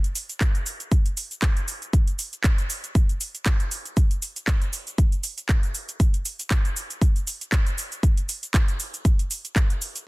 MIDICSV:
0, 0, Header, 1, 2, 480
1, 0, Start_track
1, 0, Tempo, 508475
1, 1824, Time_signature, 4, 2, 24, 8
1, 9507, End_track
2, 0, Start_track
2, 0, Title_t, "Drums"
2, 39, Note_on_c, 9, 42, 39
2, 41, Note_on_c, 9, 69, 23
2, 134, Note_off_c, 9, 42, 0
2, 135, Note_off_c, 9, 69, 0
2, 146, Note_on_c, 9, 46, 109
2, 147, Note_on_c, 9, 69, 73
2, 240, Note_off_c, 9, 46, 0
2, 242, Note_off_c, 9, 69, 0
2, 278, Note_on_c, 9, 42, 37
2, 279, Note_on_c, 9, 69, 32
2, 372, Note_off_c, 9, 42, 0
2, 374, Note_off_c, 9, 69, 0
2, 384, Note_on_c, 9, 39, 117
2, 385, Note_on_c, 9, 36, 123
2, 385, Note_on_c, 9, 42, 65
2, 387, Note_on_c, 9, 69, 42
2, 479, Note_off_c, 9, 36, 0
2, 479, Note_off_c, 9, 39, 0
2, 480, Note_off_c, 9, 42, 0
2, 481, Note_off_c, 9, 69, 0
2, 518, Note_on_c, 9, 42, 37
2, 520, Note_on_c, 9, 69, 21
2, 612, Note_off_c, 9, 42, 0
2, 614, Note_off_c, 9, 69, 0
2, 624, Note_on_c, 9, 46, 96
2, 626, Note_on_c, 9, 69, 75
2, 719, Note_off_c, 9, 46, 0
2, 720, Note_off_c, 9, 69, 0
2, 756, Note_on_c, 9, 42, 37
2, 758, Note_on_c, 9, 69, 32
2, 851, Note_off_c, 9, 42, 0
2, 852, Note_off_c, 9, 69, 0
2, 864, Note_on_c, 9, 36, 127
2, 865, Note_on_c, 9, 42, 63
2, 867, Note_on_c, 9, 69, 42
2, 958, Note_off_c, 9, 36, 0
2, 960, Note_off_c, 9, 42, 0
2, 961, Note_off_c, 9, 69, 0
2, 997, Note_on_c, 9, 42, 38
2, 999, Note_on_c, 9, 69, 21
2, 1092, Note_off_c, 9, 42, 0
2, 1093, Note_off_c, 9, 69, 0
2, 1105, Note_on_c, 9, 46, 110
2, 1107, Note_on_c, 9, 69, 73
2, 1200, Note_off_c, 9, 46, 0
2, 1201, Note_off_c, 9, 69, 0
2, 1237, Note_on_c, 9, 42, 37
2, 1238, Note_on_c, 9, 69, 30
2, 1331, Note_off_c, 9, 42, 0
2, 1333, Note_off_c, 9, 69, 0
2, 1343, Note_on_c, 9, 39, 116
2, 1344, Note_on_c, 9, 36, 121
2, 1344, Note_on_c, 9, 42, 63
2, 1346, Note_on_c, 9, 69, 41
2, 1437, Note_off_c, 9, 39, 0
2, 1438, Note_off_c, 9, 42, 0
2, 1439, Note_off_c, 9, 36, 0
2, 1440, Note_off_c, 9, 69, 0
2, 1479, Note_on_c, 9, 42, 37
2, 1480, Note_on_c, 9, 69, 20
2, 1573, Note_off_c, 9, 42, 0
2, 1575, Note_off_c, 9, 69, 0
2, 1585, Note_on_c, 9, 46, 97
2, 1587, Note_on_c, 9, 69, 77
2, 1679, Note_off_c, 9, 46, 0
2, 1681, Note_off_c, 9, 69, 0
2, 1718, Note_on_c, 9, 42, 38
2, 1720, Note_on_c, 9, 69, 32
2, 1813, Note_off_c, 9, 42, 0
2, 1814, Note_off_c, 9, 69, 0
2, 1825, Note_on_c, 9, 36, 119
2, 1826, Note_on_c, 9, 42, 66
2, 1828, Note_on_c, 9, 69, 43
2, 1919, Note_off_c, 9, 36, 0
2, 1921, Note_off_c, 9, 42, 0
2, 1922, Note_off_c, 9, 69, 0
2, 1959, Note_on_c, 9, 42, 39
2, 1960, Note_on_c, 9, 69, 23
2, 2053, Note_off_c, 9, 42, 0
2, 2054, Note_off_c, 9, 69, 0
2, 2066, Note_on_c, 9, 46, 106
2, 2067, Note_on_c, 9, 69, 75
2, 2160, Note_off_c, 9, 46, 0
2, 2161, Note_off_c, 9, 69, 0
2, 2198, Note_on_c, 9, 42, 36
2, 2200, Note_on_c, 9, 69, 32
2, 2293, Note_off_c, 9, 42, 0
2, 2294, Note_off_c, 9, 69, 0
2, 2303, Note_on_c, 9, 39, 112
2, 2304, Note_on_c, 9, 42, 62
2, 2305, Note_on_c, 9, 69, 43
2, 2306, Note_on_c, 9, 36, 124
2, 2397, Note_off_c, 9, 39, 0
2, 2398, Note_off_c, 9, 42, 0
2, 2400, Note_off_c, 9, 36, 0
2, 2400, Note_off_c, 9, 69, 0
2, 2439, Note_on_c, 9, 42, 37
2, 2441, Note_on_c, 9, 69, 21
2, 2534, Note_off_c, 9, 42, 0
2, 2535, Note_off_c, 9, 69, 0
2, 2547, Note_on_c, 9, 46, 91
2, 2549, Note_on_c, 9, 69, 78
2, 2642, Note_off_c, 9, 46, 0
2, 2643, Note_off_c, 9, 69, 0
2, 2680, Note_on_c, 9, 42, 38
2, 2681, Note_on_c, 9, 69, 32
2, 2774, Note_off_c, 9, 42, 0
2, 2776, Note_off_c, 9, 69, 0
2, 2786, Note_on_c, 9, 36, 127
2, 2788, Note_on_c, 9, 42, 63
2, 2789, Note_on_c, 9, 69, 43
2, 2880, Note_off_c, 9, 36, 0
2, 2882, Note_off_c, 9, 42, 0
2, 2884, Note_off_c, 9, 69, 0
2, 2921, Note_on_c, 9, 42, 38
2, 2922, Note_on_c, 9, 69, 23
2, 3015, Note_off_c, 9, 42, 0
2, 3016, Note_off_c, 9, 69, 0
2, 3027, Note_on_c, 9, 46, 107
2, 3029, Note_on_c, 9, 69, 75
2, 3121, Note_off_c, 9, 46, 0
2, 3123, Note_off_c, 9, 69, 0
2, 3159, Note_on_c, 9, 42, 36
2, 3161, Note_on_c, 9, 69, 31
2, 3253, Note_off_c, 9, 42, 0
2, 3255, Note_off_c, 9, 69, 0
2, 3265, Note_on_c, 9, 39, 114
2, 3266, Note_on_c, 9, 36, 117
2, 3266, Note_on_c, 9, 42, 62
2, 3268, Note_on_c, 9, 69, 43
2, 3359, Note_off_c, 9, 39, 0
2, 3360, Note_off_c, 9, 36, 0
2, 3360, Note_off_c, 9, 42, 0
2, 3362, Note_off_c, 9, 69, 0
2, 3398, Note_on_c, 9, 42, 38
2, 3400, Note_on_c, 9, 69, 21
2, 3493, Note_off_c, 9, 42, 0
2, 3494, Note_off_c, 9, 69, 0
2, 3505, Note_on_c, 9, 46, 92
2, 3507, Note_on_c, 9, 69, 72
2, 3600, Note_off_c, 9, 46, 0
2, 3601, Note_off_c, 9, 69, 0
2, 3639, Note_on_c, 9, 42, 38
2, 3640, Note_on_c, 9, 69, 31
2, 3733, Note_off_c, 9, 42, 0
2, 3735, Note_off_c, 9, 69, 0
2, 3746, Note_on_c, 9, 36, 120
2, 3746, Note_on_c, 9, 42, 64
2, 3748, Note_on_c, 9, 69, 46
2, 3840, Note_off_c, 9, 36, 0
2, 3841, Note_off_c, 9, 42, 0
2, 3842, Note_off_c, 9, 69, 0
2, 3878, Note_on_c, 9, 42, 40
2, 3880, Note_on_c, 9, 69, 23
2, 3973, Note_off_c, 9, 42, 0
2, 3974, Note_off_c, 9, 69, 0
2, 3986, Note_on_c, 9, 46, 101
2, 3988, Note_on_c, 9, 69, 76
2, 4081, Note_off_c, 9, 46, 0
2, 4082, Note_off_c, 9, 69, 0
2, 4118, Note_on_c, 9, 42, 38
2, 4119, Note_on_c, 9, 69, 33
2, 4212, Note_off_c, 9, 42, 0
2, 4214, Note_off_c, 9, 69, 0
2, 4225, Note_on_c, 9, 36, 118
2, 4225, Note_on_c, 9, 39, 110
2, 4226, Note_on_c, 9, 42, 61
2, 4227, Note_on_c, 9, 69, 44
2, 4319, Note_off_c, 9, 36, 0
2, 4319, Note_off_c, 9, 39, 0
2, 4320, Note_off_c, 9, 42, 0
2, 4322, Note_off_c, 9, 69, 0
2, 4358, Note_on_c, 9, 42, 38
2, 4359, Note_on_c, 9, 69, 22
2, 4452, Note_off_c, 9, 42, 0
2, 4454, Note_off_c, 9, 69, 0
2, 4465, Note_on_c, 9, 46, 92
2, 4466, Note_on_c, 9, 69, 78
2, 4559, Note_off_c, 9, 46, 0
2, 4561, Note_off_c, 9, 69, 0
2, 4597, Note_on_c, 9, 42, 37
2, 4598, Note_on_c, 9, 69, 34
2, 4691, Note_off_c, 9, 42, 0
2, 4693, Note_off_c, 9, 69, 0
2, 4704, Note_on_c, 9, 36, 123
2, 4704, Note_on_c, 9, 42, 63
2, 4706, Note_on_c, 9, 69, 45
2, 4798, Note_off_c, 9, 36, 0
2, 4799, Note_off_c, 9, 42, 0
2, 4800, Note_off_c, 9, 69, 0
2, 4836, Note_on_c, 9, 42, 38
2, 4838, Note_on_c, 9, 69, 23
2, 4931, Note_off_c, 9, 42, 0
2, 4932, Note_off_c, 9, 69, 0
2, 4941, Note_on_c, 9, 46, 103
2, 4943, Note_on_c, 9, 69, 78
2, 5036, Note_off_c, 9, 46, 0
2, 5037, Note_off_c, 9, 69, 0
2, 5075, Note_on_c, 9, 42, 38
2, 5077, Note_on_c, 9, 69, 33
2, 5169, Note_off_c, 9, 42, 0
2, 5171, Note_off_c, 9, 69, 0
2, 5183, Note_on_c, 9, 36, 117
2, 5183, Note_on_c, 9, 39, 108
2, 5184, Note_on_c, 9, 42, 62
2, 5186, Note_on_c, 9, 69, 44
2, 5278, Note_off_c, 9, 36, 0
2, 5278, Note_off_c, 9, 39, 0
2, 5279, Note_off_c, 9, 42, 0
2, 5280, Note_off_c, 9, 69, 0
2, 5317, Note_on_c, 9, 42, 38
2, 5318, Note_on_c, 9, 69, 22
2, 5411, Note_off_c, 9, 42, 0
2, 5412, Note_off_c, 9, 69, 0
2, 5424, Note_on_c, 9, 46, 90
2, 5425, Note_on_c, 9, 69, 75
2, 5518, Note_off_c, 9, 46, 0
2, 5520, Note_off_c, 9, 69, 0
2, 5557, Note_on_c, 9, 42, 38
2, 5558, Note_on_c, 9, 69, 35
2, 5651, Note_off_c, 9, 42, 0
2, 5653, Note_off_c, 9, 69, 0
2, 5663, Note_on_c, 9, 36, 110
2, 5665, Note_on_c, 9, 42, 68
2, 5666, Note_on_c, 9, 69, 46
2, 5757, Note_off_c, 9, 36, 0
2, 5759, Note_off_c, 9, 42, 0
2, 5761, Note_off_c, 9, 69, 0
2, 5796, Note_on_c, 9, 42, 42
2, 5797, Note_on_c, 9, 69, 24
2, 5890, Note_off_c, 9, 42, 0
2, 5892, Note_off_c, 9, 69, 0
2, 5903, Note_on_c, 9, 46, 98
2, 5904, Note_on_c, 9, 69, 81
2, 5997, Note_off_c, 9, 46, 0
2, 5999, Note_off_c, 9, 69, 0
2, 6036, Note_on_c, 9, 42, 40
2, 6038, Note_on_c, 9, 69, 35
2, 6131, Note_off_c, 9, 42, 0
2, 6132, Note_off_c, 9, 69, 0
2, 6142, Note_on_c, 9, 39, 110
2, 6143, Note_on_c, 9, 36, 116
2, 6143, Note_on_c, 9, 42, 64
2, 6145, Note_on_c, 9, 69, 46
2, 6237, Note_off_c, 9, 36, 0
2, 6237, Note_off_c, 9, 39, 0
2, 6238, Note_off_c, 9, 42, 0
2, 6239, Note_off_c, 9, 69, 0
2, 6277, Note_on_c, 9, 42, 38
2, 6279, Note_on_c, 9, 69, 23
2, 6372, Note_off_c, 9, 42, 0
2, 6373, Note_off_c, 9, 69, 0
2, 6385, Note_on_c, 9, 46, 92
2, 6387, Note_on_c, 9, 69, 81
2, 6480, Note_off_c, 9, 46, 0
2, 6481, Note_off_c, 9, 69, 0
2, 6518, Note_on_c, 9, 42, 40
2, 6519, Note_on_c, 9, 69, 36
2, 6612, Note_off_c, 9, 42, 0
2, 6614, Note_off_c, 9, 69, 0
2, 6622, Note_on_c, 9, 36, 119
2, 6627, Note_on_c, 9, 42, 65
2, 6628, Note_on_c, 9, 69, 46
2, 6717, Note_off_c, 9, 36, 0
2, 6721, Note_off_c, 9, 42, 0
2, 6723, Note_off_c, 9, 69, 0
2, 6758, Note_on_c, 9, 42, 38
2, 6760, Note_on_c, 9, 69, 24
2, 6853, Note_off_c, 9, 42, 0
2, 6854, Note_off_c, 9, 69, 0
2, 6865, Note_on_c, 9, 46, 99
2, 6867, Note_on_c, 9, 69, 83
2, 6960, Note_off_c, 9, 46, 0
2, 6961, Note_off_c, 9, 69, 0
2, 6998, Note_on_c, 9, 42, 38
2, 6999, Note_on_c, 9, 69, 34
2, 7092, Note_off_c, 9, 42, 0
2, 7093, Note_off_c, 9, 69, 0
2, 7102, Note_on_c, 9, 36, 113
2, 7103, Note_on_c, 9, 39, 116
2, 7104, Note_on_c, 9, 42, 65
2, 7105, Note_on_c, 9, 69, 46
2, 7196, Note_off_c, 9, 36, 0
2, 7197, Note_off_c, 9, 39, 0
2, 7198, Note_off_c, 9, 42, 0
2, 7200, Note_off_c, 9, 69, 0
2, 7236, Note_on_c, 9, 42, 39
2, 7238, Note_on_c, 9, 69, 22
2, 7330, Note_off_c, 9, 42, 0
2, 7332, Note_off_c, 9, 69, 0
2, 7345, Note_on_c, 9, 46, 89
2, 7346, Note_on_c, 9, 69, 84
2, 7439, Note_off_c, 9, 46, 0
2, 7440, Note_off_c, 9, 69, 0
2, 7476, Note_on_c, 9, 42, 39
2, 7477, Note_on_c, 9, 69, 35
2, 7570, Note_off_c, 9, 42, 0
2, 7572, Note_off_c, 9, 69, 0
2, 7582, Note_on_c, 9, 36, 113
2, 7584, Note_on_c, 9, 42, 68
2, 7586, Note_on_c, 9, 69, 46
2, 7676, Note_off_c, 9, 36, 0
2, 7679, Note_off_c, 9, 42, 0
2, 7680, Note_off_c, 9, 69, 0
2, 7717, Note_on_c, 9, 42, 44
2, 7718, Note_on_c, 9, 69, 25
2, 7811, Note_off_c, 9, 42, 0
2, 7813, Note_off_c, 9, 69, 0
2, 7825, Note_on_c, 9, 46, 100
2, 7826, Note_on_c, 9, 69, 81
2, 7919, Note_off_c, 9, 46, 0
2, 7921, Note_off_c, 9, 69, 0
2, 7957, Note_on_c, 9, 42, 40
2, 7959, Note_on_c, 9, 69, 35
2, 8052, Note_off_c, 9, 42, 0
2, 8053, Note_off_c, 9, 69, 0
2, 8062, Note_on_c, 9, 36, 113
2, 8065, Note_on_c, 9, 39, 112
2, 8066, Note_on_c, 9, 42, 65
2, 8068, Note_on_c, 9, 69, 46
2, 8157, Note_off_c, 9, 36, 0
2, 8159, Note_off_c, 9, 39, 0
2, 8160, Note_off_c, 9, 42, 0
2, 8162, Note_off_c, 9, 69, 0
2, 8197, Note_on_c, 9, 42, 40
2, 8199, Note_on_c, 9, 69, 24
2, 8292, Note_off_c, 9, 42, 0
2, 8293, Note_off_c, 9, 69, 0
2, 8305, Note_on_c, 9, 46, 89
2, 8306, Note_on_c, 9, 69, 78
2, 8399, Note_off_c, 9, 46, 0
2, 8401, Note_off_c, 9, 69, 0
2, 8439, Note_on_c, 9, 42, 40
2, 8440, Note_on_c, 9, 69, 37
2, 8533, Note_off_c, 9, 42, 0
2, 8535, Note_off_c, 9, 69, 0
2, 8543, Note_on_c, 9, 36, 116
2, 8546, Note_on_c, 9, 42, 67
2, 8547, Note_on_c, 9, 69, 48
2, 8637, Note_off_c, 9, 36, 0
2, 8640, Note_off_c, 9, 42, 0
2, 8642, Note_off_c, 9, 69, 0
2, 8679, Note_on_c, 9, 42, 42
2, 8680, Note_on_c, 9, 69, 24
2, 8773, Note_off_c, 9, 42, 0
2, 8774, Note_off_c, 9, 69, 0
2, 8786, Note_on_c, 9, 46, 100
2, 8787, Note_on_c, 9, 69, 81
2, 8880, Note_off_c, 9, 46, 0
2, 8881, Note_off_c, 9, 69, 0
2, 8918, Note_on_c, 9, 42, 39
2, 8920, Note_on_c, 9, 69, 33
2, 9013, Note_off_c, 9, 42, 0
2, 9014, Note_off_c, 9, 69, 0
2, 9023, Note_on_c, 9, 36, 111
2, 9026, Note_on_c, 9, 39, 113
2, 9027, Note_on_c, 9, 42, 67
2, 9029, Note_on_c, 9, 69, 46
2, 9117, Note_off_c, 9, 36, 0
2, 9121, Note_off_c, 9, 39, 0
2, 9122, Note_off_c, 9, 42, 0
2, 9123, Note_off_c, 9, 69, 0
2, 9159, Note_on_c, 9, 42, 39
2, 9160, Note_on_c, 9, 69, 23
2, 9253, Note_off_c, 9, 42, 0
2, 9255, Note_off_c, 9, 69, 0
2, 9266, Note_on_c, 9, 46, 86
2, 9268, Note_on_c, 9, 69, 84
2, 9361, Note_off_c, 9, 46, 0
2, 9362, Note_off_c, 9, 69, 0
2, 9398, Note_on_c, 9, 42, 41
2, 9400, Note_on_c, 9, 69, 35
2, 9492, Note_off_c, 9, 42, 0
2, 9494, Note_off_c, 9, 69, 0
2, 9507, End_track
0, 0, End_of_file